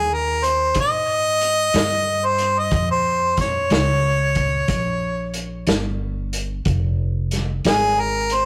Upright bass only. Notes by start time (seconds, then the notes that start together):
Already playing: D#2
0.76 G#2
1.74 G2
2.72 F2
3.71 C#2
4.68 A#1
5.67 G1
6.66 F1
7.65 G#1